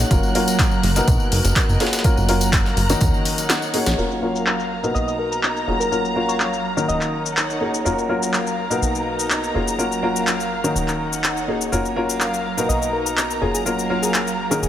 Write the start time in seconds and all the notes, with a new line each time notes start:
Already playing: D#4 A#4 C#5 F#5 F#6
0.11 F#1 F#3 A#3 C#4 F4 F#4 A#4, kick, closed hi-hat, tambourine
0.23 tambourine
0.35 A#3 C#4 F4 F#4 A#4 A#5, closed hi-hat, open hi-hat
0.48 closed hi-hat, tambourine
0.59 kick, snare, clap, closed hi-hat, tambourine
0.71 tambourine
0.83 F#1, snare, closed hi-hat, open hi-hat
0.96 B2 A#3 B3 D#4 F#4 A#4, snare, closed hi-hat, tambourine
1.08 B1 A#4, kick, closed hi-hat, tambourine
1.20 tambourine
1.32 F#1, closed hi-hat, open hi-hat
1.41 F#1 D#5, snare, closed hi-hat, tambourine
1.56 kick, snare, clap, closed hi-hat, tambourine
1.69 F#1, tambourine
1.80 F#3 A#3 C#4 F4 F#4 G#4, snare, closed hi-hat, open hi-hat
1.87 snare, closed hi-hat
1.93 snare, closed hi-hat, tambourine
1.99 snare, closed hi-hat
2.04 A#3 C#4 F4 F#4 A#4, kick, closed hi-hat, tambourine
2.17 F#1, tambourine
2.29 A#3 C#4 F4 F#4 A#4, closed hi-hat, open hi-hat
2.35 A#5
2.41 closed hi-hat, tambourine
2.53 kick, snare, clap, closed hi-hat, tambourine
2.66 snare, tambourine
2.77 F#1, closed hi-hat, open hi-hat
2.89 D#3 A#3 C#4 D#4 F#4 A#4, snare, closed hi-hat, tambourine
3.01 D#2 D#4, kick, closed hi-hat, tambourine
3.14 tambourine
3.25 closed hi-hat, open hi-hat
3.38 closed hi-hat, tambourine
3.45 C#5 F#5
3.50 snare, clap, closed hi-hat, tambourine
3.62 tambourine
3.74 A#3 C#4 D#4 F#4 G#4, closed hi-hat, open hi-hat
3.86 A#1, snare, closed hi-hat, tambourine
3.98 F#1 F#3 A#3 C#4 F4 F#4 A#4 A#5, shaker
4.11 F5, shaker
4.22 A#3 C#4 F4 F#4 A#4
4.36 shaker
4.42 A#5
4.46 clap, shaker
4.60 shaker
4.83 B2 A#3 B3 D#4 F#4 A#4, shaker
4.95 B1 D#4 D#5, shaker
5.08 D#5, shaker
5.19 A#4
5.32 A#4, shaker
5.43 clap, shaker
5.57 shaker
5.67 F#1 F#3 A#3 C#4 F4 F#4 G#4
5.80 A#4, shaker
5.92 A#3 C#4 F4 F#4 A#4, shaker
6.05 F5, shaker
6.16 A#3 C#4 F4 F#4 A#4
6.29 C#5, shaker
6.40 C#5, clap, shaker
6.53 shaker
6.77 D#3 A#3 C#4 D#4 F#4 A#4, shaker
6.88 D#1 D#4 D#5, shaker
7.01 clap, shaker
7.24 C#5, shaker
7.32 F#5
7.37 clap, shaker
7.50 shaker
7.61 A#3 C#4 D#4 F#4 G#4
7.74 shaker
7.85 F#1 F#3 A#3 C#4 F4 F#4 A#4, shaker
7.98 shaker
8.09 A#3 C#4 F4 F#4 A#4
8.23 shaker
8.29 F5 A#5
8.34 clap, shaker
8.47 shaker
8.70 B2 A#3 B3 D#4 F#4 A#4, shaker
8.82 B1 D#4, shaker
8.95 shaker
9.19 shaker
9.30 clap, shaker
9.44 shaker
9.54 F#1 F#3 A#3 C#4 F4 F#4 G#4
9.68 shaker
9.78 A#3 C#4 F4 F#4 A#4, shaker
9.92 shaker
10.03 A#3 C#4 F4 F#4 A#4
10.09 F5
10.16 shaker
10.27 clap, shaker
10.40 shaker
10.64 D#3 A#3 C#4 D#4 F#4 A#4, shaker
10.75 D#1 D#4, shaker
10.88 clap, shaker
11.05 F#5
11.13 shaker
11.19 C#5
11.24 clap, shaker
11.37 shaker
11.48 A#3 C#4 D#4 F#4 G#4
11.61 shaker
11.72 F#1 F#3 A#3 C#4 F4 F#4 A#4 A#5, shaker
11.85 shaker
11.96 A#3 C#4 F4 F#4 A#4
12.04 F5
12.10 shaker
12.16 A#5
12.20 clap, shaker
12.34 shaker
12.57 B2 A#3 B3 D#4 F#4 A#4, shaker
12.69 B1 D#4 D#5, shaker
12.81 D#5, shaker
12.93 A#4
13.06 A#4, shaker
13.17 clap, shaker
13.31 shaker
13.41 F#1 F#3 A#3 C#4 F4 F#4 G#4
13.54 G#4, shaker
13.66 A#3 C#4 F4 F#4 A#4, shaker
13.77 F5, shaker
13.90 A#3 C#4 F4 F#4 A#4
14.03 G#4, shaker
14.14 G#4, clap, shaker
14.27 shaker
14.51 D#3 A#3 C#4 D#4 F#4 G#4 A#4, shaker
14.62 D#1 D#4 G#4, shaker